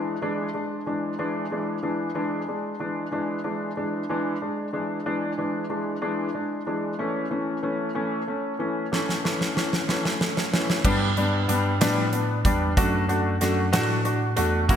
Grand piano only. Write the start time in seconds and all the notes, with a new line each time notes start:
Already playing: E3 G#3 D4
0.22 E3 G#3 D4
0.54 G#3 D4
0.86 E3 G#3 D4
1.19 E3 G#3 D4
1.51 E3 G#3 D4
1.83 E3 G#3 D4
2.15 E3 G#3 D4
2.48 G#3 D4
2.80 E3 G#3 D4
3.11 E3 G#3 D4
3.44 E3 G#3 D4
3.77 E3 G#3 D4
4.09 E3 G#3 D4
4.42 G#3 D4
4.73 E3 G#3 D4
5.06 E3 G#3 D4
5.38 E3 G#3 D4
5.69 E3 G#3 D4
6.02 E3 G#3 D4
6.34 G#3 D4
6.66 E3 G#3 D4
6.99 E3 A3 C#4
7.30 E3 A3 C#4
7.63 E3 A3 C#4
7.95 E3 A3 C#4
8.27 A3 C#4
8.59 E3 A3 C#4
8.92 E3 A3 C#4
9.24 E3 A3 C#4
9.55 E3 A3 C#4
9.88 E3 A3 C#4
10.20 A3 C#4
10.53 E3 A3 C#4
10.84 G3 B3 D4
11.17 G3 B3 D4
11.48 G3 B3 D4
11.81 G3 B3 D4
12.12 B3 D4
12.45 G3 B3 D4
12.77 A3 D4 F#4
13.08 A3 D4 F#4
13.41 A3 D4 F#4
13.72 A3 D4 F#4
14.05 D4 F#4
14.36 A3 D4 F#4
14.69 A#3 E4 F#4